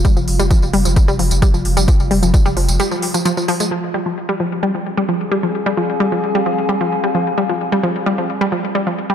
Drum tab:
HH |x-oxx-oxx-oxx-ox|x-oxx-oxx-oxx-ox|----------------|----------------|
TB |xx-xxx-xxx-xxx-x|xx-xxx-xxx-xxx-x|----------------|----------------|
BD |o---o---o---o---|o---o-----------|----------------|----------------|

HH |----------------|
TB |----------------|
BD |----------------|